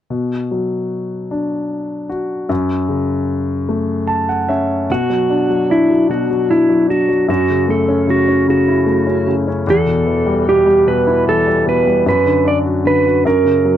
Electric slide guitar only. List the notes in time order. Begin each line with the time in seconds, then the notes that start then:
4.92 F#4
5.71 E4
6.11 F#4
6.51 E4
6.90 F#4
7.30 F#4
7.70 A4
8.10 F#4
8.50 F#4
9.70 A4
10.49 G4
10.88 B4
11.29 A4
11.69 B4
12.09 B4
12.48 D5
12.87 B4
13.27 A#4